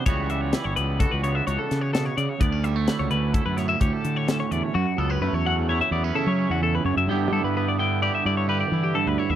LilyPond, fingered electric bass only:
\new Staff \with { instrumentName = "Fingered electric bass" } { \clef bass \time 5/4 \key fis \phrygian \tempo 4 = 128 cis,4~ cis,16 g,,16 cis,8. cis,8. cis,16 r16 cis4 cis16 r16 | d,4~ d,16 cis,16 d,8. fis,8. d,16 r16 d4 e,16 r16 | fis,16 r16 cis,8 fis,16 e,4~ e,16 e,8 r16 fis8 e,8. fis,16 fis,16 | g,8 g16 g,4.~ g,16 g,4 e8 r16 d,16 r16 ees,16 | }